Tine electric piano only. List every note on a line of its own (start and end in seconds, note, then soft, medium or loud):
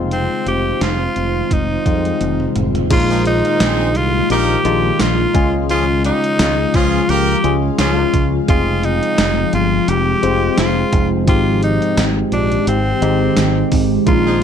0.00 0.92 G#3 medium
0.00 0.89 C4 medium
0.00 0.89 D#4 medium
0.00 0.89 F4 medium
1.85 1.93 G3 medium
1.85 2.55 C4 medium
1.85 2.55 D#4 medium
1.85 2.56 F4 medium
1.92 2.58 G#3 medium
2.90 3.91 A#2 medium
2.90 3.84 G#3 medium
2.90 3.84 A#3 medium
2.90 3.84 D#4 medium
2.90 3.85 F4 medium
4.64 5.33 G#3 medium
4.64 5.34 A#3 medium
4.64 5.34 D#4 medium
4.64 5.34 F4 medium
5.34 6.35 C#3 medium
5.34 6.47 G#3 medium
5.34 6.47 C#4 medium
5.34 6.47 F4 medium
5.34 6.47 G#4 medium
7.43 8.13 G#3 medium
7.43 8.13 C#4 medium
7.43 8.14 F4 medium
7.43 8.14 G#4 medium
8.48 9.42 G#3 medium
8.48 9.42 C4 medium
8.48 9.42 F4 medium
8.48 9.43 G#4 medium
10.22 10.92 G#3 medium
10.22 10.92 C4 medium
10.22 10.93 F4 medium
10.22 10.93 C5 medium
11.27 12.28 G#2 medium
11.27 12.21 G#3 medium
11.27 12.21 C4 medium
11.27 12.22 D#4 medium
11.27 12.22 G4 medium
13.02 13.71 G#3 medium
13.02 13.71 C4 medium
13.02 13.72 D#4 medium
13.02 13.72 G4 medium
14.06 14.43 A#2 medium
14.06 14.43 G#3 medium
14.06 14.43 A#3 medium
14.06 14.43 D#4 medium
14.06 14.14 E4 medium
14.14 14.43 F4 medium